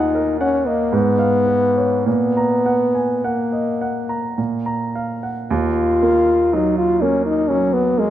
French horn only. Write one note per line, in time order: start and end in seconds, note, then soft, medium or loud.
0.00 0.40 D#4 medium
0.41 0.69 C#4 medium
0.67 0.96 A#3 medium
0.94 2.06 B3 medium
2.07 3.26 B3 medium
3.25 4.38 A#3 medium
5.51 6.55 F4 medium
6.53 6.77 D#4 medium
6.78 7.03 F4 medium
7.02 7.25 C#4 medium
7.26 7.51 D#4 medium
7.49 7.75 C#4 medium
7.73 8.00 B3 medium
7.99 8.10 G#3 medium